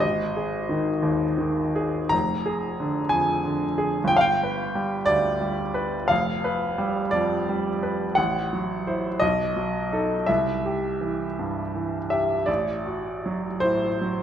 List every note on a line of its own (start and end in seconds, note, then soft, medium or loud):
0.00 2.06 G#1 medium
0.00 2.12 D#5 medium
0.37 0.89 G#4 soft
0.69 1.24 D#3 soft
1.02 1.61 D#2 medium
1.38 1.98 D#3 soft
1.76 2.13 G#4 medium
2.09 4.06 F1 medium
2.09 3.11 A#5 medium
2.46 2.99 G#4 medium
2.80 3.32 D3 medium
3.09 3.65 F2 soft
3.09 4.09 G#5 medium
3.45 3.97 D3 soft
3.78 4.10 G#4 medium
4.04 6.03 G1 medium
4.04 4.15 G5 medium
4.17 4.23 F5 medium
4.21 5.08 G5 medium
4.43 4.96 B4 soft
4.75 5.28 G3 soft
5.06 5.62 D2 medium
5.06 6.08 D5 loud
5.41 5.96 G3 soft
5.74 6.09 B4 medium
6.08 8.14 F1 medium
6.08 7.13 F5 medium
6.44 7.00 B4 medium
6.78 7.34 G3 medium
7.11 7.69 F2 medium
7.11 8.16 D5 medium
7.49 8.04 G3 soft
7.83 8.17 B4 soft
8.15 9.19 A1 medium
8.15 9.21 F#5 medium
8.53 9.08 F#3 soft
8.87 9.19 E4 soft
8.87 9.18 C5 soft
9.20 10.25 B1 medium
9.20 10.27 D#5 medium
9.56 10.14 F#3 soft
9.93 10.25 D#4 soft
9.93 10.25 A4 soft
10.26 12.44 C2 medium
10.26 12.09 E5 medium
10.65 11.24 G4 soft
11.01 11.60 E3 soft
11.39 11.97 G2 soft
11.75 12.33 E3 soft
12.10 12.48 G4 soft
12.10 12.47 E5 medium
12.46 14.23 A1 medium
12.46 13.61 D5 medium
12.86 13.47 F#4 soft
13.26 13.86 F#3 soft
13.60 14.23 A2 medium
13.60 14.23 C5 medium
14.01 14.23 F#3 soft